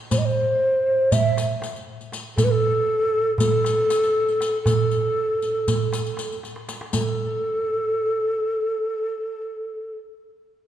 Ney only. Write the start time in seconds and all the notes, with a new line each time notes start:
0.11 C5
0.18 D#5
0.25 C5
1.12 E5
2.37 A4
2.44 B4
2.51 A4
3.37 A4
4.63 A4
6.93 A4